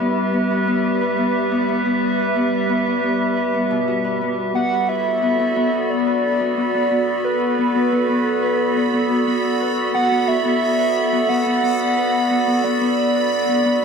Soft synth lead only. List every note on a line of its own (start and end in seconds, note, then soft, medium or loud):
4.55 4.90 F#5 loud
4.89 5.91 E5 loud
5.90 7.26 D5 loud
7.24 9.60 B4 loud
9.94 10.29 F#5 loud
10.28 11.31 E5 loud
11.29 12.65 F#5 loud
12.64 13.85 D5 loud